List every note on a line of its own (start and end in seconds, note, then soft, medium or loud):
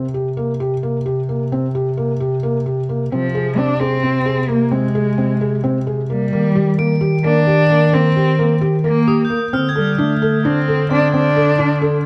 0.00 3.08 C3 medium
0.14 0.27 G4 medium
0.37 0.50 A#3 medium
0.60 0.73 G4 medium
0.83 0.96 A#3 medium
1.06 1.19 G4 medium
1.29 1.42 A#3 medium
1.52 1.65 C4 medium
1.75 1.88 G4 medium
1.97 2.11 A#3 medium
2.20 2.34 G4 medium
2.43 2.56 A#3 medium
2.66 2.79 G4 medium
2.89 3.02 A#3 medium
3.12 6.29 C3 medium
3.12 3.59 F3 medium
3.12 3.25 C4 medium
3.35 3.48 G#4 medium
3.57 3.71 C4 medium
3.57 3.81 D4 medium
3.80 4.49 C4 loud
3.80 3.94 G#4 medium
4.03 4.17 C4 medium
4.26 4.39 G#4 medium
4.48 4.73 A#3 medium
4.48 4.62 A#3 medium
4.71 5.87 G#3 medium
4.71 4.85 C4 medium
4.95 5.08 G#4 medium
5.18 5.31 C4 medium
5.41 5.54 G#4 medium
5.64 5.77 C4 medium
5.87 6.00 G#4 medium
6.10 6.98 G3 medium
6.10 6.23 A#3 medium
6.33 9.37 D#3 medium
6.33 6.46 A#3 medium
6.55 6.69 G4 medium
6.78 6.92 A#3 medium
6.78 8.09 D7 medium
7.01 7.14 G4 medium
7.24 7.37 A#3 medium
7.24 7.95 D4 loud
7.47 7.60 G4 medium
7.70 7.83 A#3 medium
7.93 8.06 A#3 medium
7.93 8.62 C4 medium
8.16 8.29 G4 medium
8.39 8.52 A#3 medium
8.61 8.75 G4 medium
8.84 8.97 A#3 medium
8.84 9.33 A#3 medium
9.07 9.21 G4 medium
9.07 9.72 D#6 soft
9.25 9.87 G6 soft
9.30 9.43 A#3 medium
9.53 12.06 D3 medium
9.53 9.66 C4 medium
9.53 10.83 F6 medium
9.69 10.97 G#6 soft
9.76 10.01 G3 medium
9.76 9.89 A4 medium
9.98 10.46 A3 medium
9.98 10.12 D4 medium
10.22 10.35 A4 medium
10.45 10.91 C4 medium
10.45 10.58 D4 medium
10.68 10.81 A4 medium
10.91 11.04 C4 medium
10.91 11.12 D4 medium
10.91 12.06 C6 soft
11.14 11.27 C4 medium
11.14 12.01 D4 medium
11.36 11.49 A4 medium
11.59 11.72 D4 medium
11.82 11.95 A4 medium